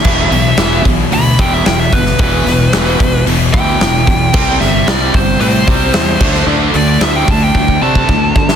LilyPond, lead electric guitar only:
\new Staff \with { instrumentName = "Lead electric guitar" } { \time 4/4 \key e \minor \tempo 4 = 112 e''4. r8 b''8 g''16 e''16 g''16 e''16 b'8 | b'2 r8 g''4.~ | g''8 e''8 d''8 c''8 c''2 | r8 d''8 e''16 g''16 a''16 g''8. a''4. | }